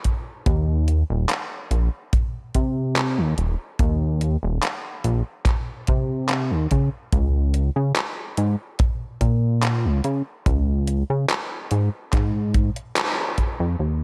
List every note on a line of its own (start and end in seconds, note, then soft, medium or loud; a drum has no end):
0.04 kick medium
0.04 closed hi-hat medium
0.46 1.03 D#2 loud
0.46 kick loud
0.46 closed hi-hat medium
0.88 closed hi-hat medium
1.10 1.26 D#1 loud
1.29 clap loud
1.29 closed hi-hat medium
1.71 1.89 A#1 medium
1.71 closed hi-hat medium
2.13 kick loud
2.13 closed hi-hat medium
2.54 3.20 C3 medium
2.54 kick medium
2.54 closed hi-hat medium
2.96 clap loud
2.96 closed hi-hat medium
3.18 3.34 D#2 loud
3.38 3.56 D#1 medium
3.38 closed hi-hat medium
3.79 4.37 D#2 loud
3.79 kick loud
3.79 closed hi-hat medium
4.21 closed hi-hat medium
4.43 4.59 D#1 loud
4.63 clap loud
4.63 closed hi-hat medium
5.04 5.22 A#1 loud
5.04 closed hi-hat medium
5.45 kick loud
5.45 clap medium
5.45 closed hi-hat medium
5.87 6.52 C3 medium
5.87 kick medium
5.87 closed hi-hat medium
6.29 clap loud
6.29 closed hi-hat medium
6.51 6.67 D#2 loud
6.71 6.89 C#3 medium
6.71 kick medium
6.71 closed hi-hat medium
7.12 7.70 C#2 loud
7.12 kick loud
7.12 closed hi-hat medium
7.54 closed hi-hat medium
7.76 7.92 C#3 loud
7.96 clap loud
7.96 closed hi-hat medium
8.37 8.56 G#2 loud
8.37 closed hi-hat medium
8.79 kick loud
8.79 closed hi-hat medium
9.21 9.87 A#2 medium
9.21 kick medium
9.21 closed hi-hat medium
9.63 clap loud
9.63 closed hi-hat medium
9.85 10.01 C#2 loud
10.04 10.22 C#3 medium
10.04 closed hi-hat medium
10.46 11.04 C#2 loud
10.46 kick loud
10.46 closed hi-hat medium
10.88 closed hi-hat medium
11.10 11.26 C#3 loud
11.29 clap loud
11.29 closed hi-hat medium
11.71 11.89 G#2 loud
11.71 closed hi-hat medium
12.13 12.70 G#2 medium
12.13 kick loud
12.13 clap medium
12.13 closed hi-hat medium
12.54 kick loud
12.54 closed hi-hat medium
12.76 closed hi-hat soft
12.96 clap loud
12.96 closed hi-hat medium
13.38 kick medium
13.38 closed hi-hat medium
13.60 13.76 F2 medium
13.79 14.04 D#2 loud
13.79 closed hi-hat medium
13.79 crash medium